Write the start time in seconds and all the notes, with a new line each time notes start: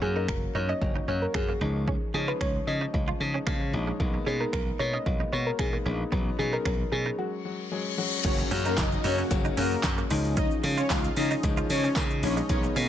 0.02 F#2 F#3 A#3 C#4 F#4 G#4
0.16 D#4 A#4
0.28 F#1 A#4, finger snap, muted clean electric guitar stroke, kick
0.55 F#2 F#3 A#3 C#4 D#4 C#5
0.69 C#4 D#5
0.81 F#1 F#3 A#3 C#4 F#4, muted clean electric guitar stroke, kick
0.96 D#4
1.08 F#2 F#3 A#3 C#4 F#4 C#5
1.22 A#4
1.34 F#2 F#3 A#3 C#4 F#4 G#4, finger snap, muted clean electric guitar stroke, kick
1.49 A#3
1.61 C#2 F3 G#3 C#4 D#4
1.88 C#4, kick
2.14 C#3 F3 G#3 C#4 D#4 G#4, muted clean electric guitar stroke
2.28 F4 B4
2.41 C#2 C#4 C#5, finger snap, kick
2.67 C#3 F3 G#3 C#4 D#4 D#5, muted clean electric guitar stroke
2.81 D#4
2.93 C#2 F3 G#3 C#4 F4, kick
3.08 F4
3.20 C#3 F3 G#3 C#4 D#4, muted clean electric guitar stroke
3.34 C#4
3.47 C#3 F3 G#3 A#3 C#4 F4, finger snap, kick
3.61 muted clean electric guitar stroke
3.73 A#1 F3 G#3 C#4 D#4
3.87 G#3
4.00 B1 G#3 A#3 B3 D#4, kick
4.14 muted clean electric guitar stroke
4.26 B2 G#3 A#3 B3 C#4 D#4 G#4
4.40 D#4 A#4
4.53 B1 A#3 B3 A#4, finger snap, muted clean electric guitar stroke, kick
4.79 B2 G#3 A#3 B3 D#4 C#5
4.93 C#4 D#5
5.06 B1 G#3 A#3 B3 F4, muted clean electric guitar stroke, kick
5.20 D#4
5.32 B2 G#3 A#3 B3 F#4 C#5
5.47 A#4
5.59 B2 G#3 A#3 B3 D#4 G#4, finger snap, muted clean electric guitar stroke, kick
5.73 A#3
5.86 A#1 G#3 A#3 B3 C#4 D#4
6.12 B1 F#3 B3 C#4 D#4, kick
6.38 B2 F#3 B3 C#4 D#4 G#4, muted clean electric guitar stroke
6.53 D#4 A#4
6.65 B1 C#4 A#4, finger snap, kick
6.92 B2 F#3 B3 C#4 D#4 G#4, muted clean electric guitar stroke
7.06 D#4
7.18 F#3 G#3 C#4 F#4, reverse cymbal
7.45 F#3 G#3 C#4 F#4
7.71 F#3 G#3 C#4 G#4
7.98 F#3 G#3 C#4 F#4
8.24 F#1 C#3 F#3 A#3 C#4 F#4 A#4 C#5 F#5, kick, closed hi-hat, crash, tambourine, downlifter, shaker
8.39 muted clean electric guitar stroke, shaker
8.51 F#2 C#3 F#3 A#3 C#4 F#4, open hi-hat, shaker
8.65 A#3 D#4 A#4, shaker
8.77 F#1 C#3 F#3 C#4 D#4 D#5, muted clean electric guitar stroke, kick, snare, clap, closed hi-hat, tambourine, shaker
8.92 shaker
9.04 F#2 C#3 F#3 A#3 C#4 D#4 F#4 C#5, open hi-hat, tambourine, shaker
9.18 C#4, shaker
9.30 F#1 C#3 F#3 A#3 C#4 F#4, muted clean electric guitar stroke, kick, closed hi-hat, tambourine, shaker
9.45 D#4, shaker
9.57 F#2 C#3 F#3 A#3 C#4 F#4 A#4, open hi-hat, tambourine, shaker
9.71 shaker
9.84 F#2 C#3 F#3 A#3 C#4, muted clean electric guitar stroke, kick, snare, clap, closed hi-hat, tambourine, shaker
9.98 A#3, shaker
10.10 C#2 D#3 F3 G#3 C#4 D#4 F4 G#4 D#5, open hi-hat, tambourine, shaker
10.25 shaker
10.37 C#4 D#4 D#5, kick, closed hi-hat, shaker
10.51 shaker
10.63 C#3 D#3 F3 G#3 C#4 F4, muted clean electric guitar stroke, open hi-hat, tambourine, shaker
10.78 C#4 F4 C#5, shaker
10.90 C#2 D#3 F3 G#3 C#4 D#4 F4 F5, kick, snare, clap, closed hi-hat, tambourine, shaker
11.04 shaker
11.16 C#3 D#3 F3 G#3 C#4 D#4 D#5, muted clean electric guitar stroke, open hi-hat, tambourine, shaker
11.31 D#4, shaker
11.43 C#2 D#3 F3 G#3 C#4 D#4, kick, closed hi-hat, tambourine, shaker
11.57 F4, shaker
11.70 C#3 D#3 F3 G#3 C#4 D#4 C#5, muted clean electric guitar stroke, open hi-hat, tambourine, shaker
11.84 C#4, shaker
11.96 C#3 D#3 F3 G#3 A#3 C#4 D#4, kick, snare, clap, closed hi-hat, tambourine, shaker
12.10 muted clean electric guitar stroke, shaker
12.23 A#1 D#3 F3 G#3 C#4 D#4 C#5, open hi-hat, tambourine, shaker
12.37 G#3, shaker
12.49 B1 D#3 G#3 A#3 B3 C#4 D#4 A#4 C#5, kick, closed hi-hat, tambourine, shaker
12.63 muted clean electric guitar stroke, shaker
12.76 B2 D#3 G#3 A#3 B3 C#4 F4, open hi-hat, tambourine, shaker